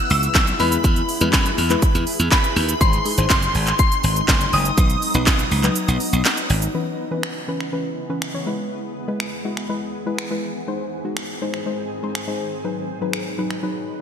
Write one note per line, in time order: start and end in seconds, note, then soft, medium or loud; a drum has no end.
0.00 0.58 C#3 medium
0.00 0.58 G#3 medium
0.00 0.56 B3 medium
0.00 2.77 E4 medium
0.10 0.27 C#2 loud
0.10 0.34 E6 loud
0.10 open hi-hat medium
0.10 shaker soft
0.23 closed hi-hat medium
0.23 shaker medium
0.35 0.52 B1 loud
0.35 0.46 E6 loud
0.35 kick loud
0.35 snare medium
0.35 clap loud
0.35 clap medium
0.35 closed hi-hat medium
0.35 shaker medium
0.47 closed hi-hat medium
0.47 shaker medium
0.59 0.76 E2 loud
0.59 2.79 E3 medium
0.59 1.09 G#3 medium
0.59 1.09 E4 medium
0.59 2.79 G#4 medium
0.59 2.79 B4 medium
0.59 1.09 B4 medium
0.59 2.03 B5 medium
0.59 open hi-hat medium
0.59 shaker soft
0.72 closed hi-hat medium
0.72 shaker medium
0.84 1.01 E2 loud
0.84 kick loud
0.84 closed hi-hat medium
0.84 shaker medium
0.96 closed hi-hat medium
0.96 shaker medium
1.09 open hi-hat medium
1.09 shaker medium
1.21 1.29 E2 loud
1.21 1.55 G#3 medium
1.21 1.55 E4 medium
1.21 1.55 B4 loud
1.21 closed hi-hat medium
1.21 shaker medium
1.33 1.50 F#2 loud
1.33 kick loud
1.33 snare loud
1.33 clap loud
1.33 clap medium
1.33 closed hi-hat medium
1.33 shaker medium
1.46 closed hi-hat medium
1.46 shaker medium
1.58 1.75 E2 medium
1.58 open hi-hat medium
1.58 shaker medium
1.70 2.38 G#3 medium
1.70 2.38 E4 medium
1.70 2.38 B4 loud
1.70 clap medium
1.70 closed hi-hat medium
1.70 shaker medium
1.82 kick loud
1.82 closed hi-hat medium
1.82 shaker medium
1.95 2.03 E2 loud
1.95 closed hi-hat medium
1.95 shaker medium
2.07 open hi-hat medium
2.07 shaker medium
2.19 2.28 E2 medium
2.19 closed hi-hat medium
2.19 shaker medium
2.32 2.82 B5 medium
2.32 kick loud
2.32 snare medium
2.32 clap loud
2.32 clap medium
2.32 closed hi-hat medium
2.32 shaker medium
2.44 closed hi-hat medium
2.44 shaker medium
2.56 2.73 D#2 medium
2.56 open hi-hat medium
2.56 shaker soft
2.69 closed hi-hat medium
2.69 shaker medium
2.81 2.98 G#1 loud
2.81 2.98 G#3 medium
2.81 4.76 G#3 medium
2.81 4.76 C4 medium
2.81 6.70 D#4 medium
2.81 2.98 D#4 medium
2.81 2.98 C5 medium
2.81 3.27 C6 medium
2.81 kick loud
2.81 closed hi-hat medium
2.81 shaker medium
2.93 closed hi-hat medium
2.93 shaker medium
3.05 3.14 G#3 medium
3.05 3.14 D#4 medium
3.05 3.14 G#4 medium
3.05 open hi-hat medium
3.05 shaker medium
3.18 3.26 G#1 loud
3.18 3.85 G#3 medium
3.18 3.86 D#4 medium
3.18 3.86 C5 medium
3.18 closed hi-hat medium
3.18 shaker medium
3.30 3.76 C6 loud
3.30 kick loud
3.30 snare loud
3.30 clap loud
3.30 clap medium
3.30 closed hi-hat medium
3.30 shaker medium
3.42 closed hi-hat medium
3.42 shaker medium
3.55 3.71 G#1 medium
3.55 open hi-hat medium
3.55 shaker soft
3.67 clap medium
3.67 closed hi-hat medium
3.67 shaker medium
3.79 4.55 C6 loud
3.79 kick loud
3.79 closed hi-hat medium
3.79 shaker medium
3.92 closed hi-hat medium
3.92 shaker medium
4.04 4.21 G#1 loud
4.04 open hi-hat medium
4.04 shaker medium
4.16 closed hi-hat medium
4.16 shaker medium
4.28 4.45 F#1 loud
4.28 kick loud
4.28 snare medium
4.28 clap loud
4.28 clap medium
4.28 closed hi-hat medium
4.28 shaker medium
4.41 closed hi-hat medium
4.41 shaker medium
4.53 4.70 F#1 medium
4.53 6.46 D#6 loud
4.53 open hi-hat medium
4.53 shaker soft
4.65 closed hi-hat medium
4.65 shaker medium
4.77 4.94 B1 loud
4.77 5.03 F#3 medium
4.77 6.72 F#3 medium
4.77 6.72 B3 medium
4.77 5.03 D#4 medium
4.77 5.03 B4 medium
4.77 kick loud
4.77 closed hi-hat medium
4.77 shaker medium
4.90 closed hi-hat medium
4.90 shaker medium
5.02 open hi-hat medium
5.02 shaker medium
5.14 5.23 B1 medium
5.14 5.48 F#3 medium
5.14 5.48 D#4 medium
5.14 5.49 B4 loud
5.14 closed hi-hat medium
5.14 shaker medium
5.27 5.44 B1 medium
5.27 kick loud
5.27 snare loud
5.27 clap loud
5.27 clap medium
5.27 closed hi-hat medium
5.27 shaker medium
5.39 closed hi-hat medium
5.39 shaker medium
5.51 5.68 C#2 loud
5.51 open hi-hat medium
5.51 shaker soft
5.64 6.31 F#3 medium
5.64 6.32 D#4 medium
5.64 6.32 B4 loud
5.64 clap medium
5.64 closed hi-hat medium
5.64 shaker medium
5.76 closed hi-hat medium
5.76 shaker medium
5.88 5.97 B1 medium
5.88 closed hi-hat medium
5.88 shaker medium
6.00 open hi-hat medium
6.00 shaker medium
6.13 6.21 B1 medium
6.13 closed hi-hat medium
6.13 shaker medium
6.25 snare medium
6.25 clap loud
6.25 clap medium
6.25 closed hi-hat medium
6.25 shaker medium
6.37 closed hi-hat medium
6.37 shaker medium
6.50 6.66 G#1 medium
6.50 open hi-hat medium
6.50 shaker soft
6.62 closed hi-hat medium
6.62 shaker medium
6.74 8.45 C#3 medium
6.74 7.00 E3 medium
6.74 8.45 G#3 medium
6.74 10.64 B3 medium
6.74 7.00 C#4 medium
6.74 8.45 E4 medium
6.74 7.00 B4 medium
7.11 7.37 E3 medium
7.11 7.37 C#4 medium
7.11 7.37 B4 medium
7.23 finger snap loud
7.48 7.65 E3 medium
7.48 7.65 C#4 medium
7.48 7.65 B4 loud
7.61 finger snap medium
7.72 7.98 E3 medium
7.72 7.98 C#4 medium
7.72 7.98 B4 loud
8.09 8.26 E3 medium
8.09 8.27 C#4 medium
8.09 8.27 B4 medium
8.22 finger snap loud
8.34 8.46 E3 medium
8.34 8.47 C#4 medium
8.34 8.47 C#5 loud
8.46 10.66 E2 medium
8.46 10.66 E3 medium
8.46 8.96 G#3 medium
8.46 8.96 E4 medium
8.46 10.66 G#4 medium
8.46 8.96 B4 loud
9.08 9.33 G#3 medium
9.08 9.33 E4 medium
9.08 9.34 B4 loud
9.20 finger snap loud
9.45 9.62 G#3 medium
9.45 9.62 E4 medium
9.45 9.62 F#4 medium
9.57 finger snap medium
9.69 9.95 G#3 medium
9.69 9.95 E4 medium
9.69 9.95 B4 loud
10.06 10.23 G#3 medium
10.06 10.23 E4 medium
10.06 10.23 B4 loud
10.18 finger snap loud
10.31 10.56 G#3 medium
10.31 10.56 E4 medium
10.31 10.57 B4 loud
10.68 12.63 G#2 medium
10.68 12.63 D#3 medium
10.68 10.93 G#3 medium
10.68 12.63 C4 medium
10.68 10.93 D#4 medium
10.68 12.63 G#4 medium
10.68 10.93 C5 medium
11.04 11.30 G#3 medium
11.04 11.30 D#4 medium
11.04 11.30 F#4 medium
11.17 finger snap loud
11.42 11.59 G#3 medium
11.42 11.59 D#4 medium
11.42 11.59 C5 loud
11.54 finger snap medium
11.66 11.92 G#3 medium
11.66 11.92 D#4 medium
11.66 11.92 C5 medium
12.03 12.20 G#3 medium
12.03 12.20 D#4 medium
12.03 12.20 C5 loud
12.15 finger snap loud
12.27 12.53 G#3 medium
12.27 12.53 D#4 medium
12.27 12.53 C5 medium
12.64 14.01 B2 medium
12.64 12.90 F#3 medium
12.64 14.01 F#3 medium
12.64 12.90 D#4 medium
12.64 14.01 D#4 medium
12.64 14.01 B4 medium
12.64 12.90 B4 medium
13.01 13.27 F#3 medium
13.01 13.27 D#4 medium
13.01 13.27 B4 loud
13.13 finger snap loud
13.38 13.55 F#3 medium
13.38 13.55 D#4 medium
13.38 13.55 B4 loud
13.51 finger snap medium
13.63 13.88 F#3 medium
13.63 13.88 D#4 medium
13.63 13.88 B4 loud